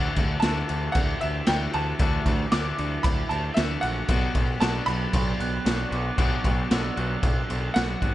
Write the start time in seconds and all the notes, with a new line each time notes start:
Already playing: D3 E3 A3 D4 F#4 E5 F#5 D6
0.15 D2 A3 D4 F#4, kick, crash
0.40 D3 E3 A3 E4 A5, snare, crash
0.44 D2 D4 F#4
0.68 D2 D3 A3 D4 F#4, crash
0.92 D2 E4 F#5, kick, crash
1.21 D2 A3 E5, crash
1.47 D2 D3 E3 A3 D4 F#4 G5, snare, crash
1.73 D2 A3 D4 F#4 A5, crash
1.99 D2 D3 E3 A3 D4 F#4, kick, crash
2.25 D2 A3 D4 F#4, kick, crash
2.51 D2 D3 E3 A3 D4 E4 F#4 D6, snare, crash
2.77 D2 D3 D4 F#4, crash
2.81 A3
3.03 D2 E4 B5, kick, crash
3.29 D2 A3 A5, crash
3.54 D2 D3 E3 A3 E5, snare, crash
3.59 D4 F#4
3.81 A#1 A3 D4 F#4 F#5, crash
4.08 B1 B2 F#3 B3 D4 F#4 D5 B5, kick, crash
4.34 B1 B3 D4 F#4, kick, crash
4.60 B1 B2 F#3 B3 D4 F#4 A5, snare, crash
4.86 B1 F#3 B3 D4 F#4 B5, crash
5.12 B1 D4, kick, crash
5.39 B1 B3 F#6, crash
5.65 B1 F#3 B3 D4 F#4 C#6, snare, crash
5.91 B1 B3 D4 F#4 D6, crash
6.17 B1 B2 F#3 B3 D4 F#4, kick, crash
6.43 B1 B3 D4 F#4, kick, crash
6.69 B1 B2 F#3 B3 D4 F#4 E6, snare, crash
6.96 B1 F#3 B3 D4 F#4 F#6, crash
7.22 B1 D4, kick, crash
7.49 B1 B3, crash
7.74 B1 F#3 B3 D4 F#4 F#5, snare, crash
8.02 G#1 B3 D4 F#4, kick, crash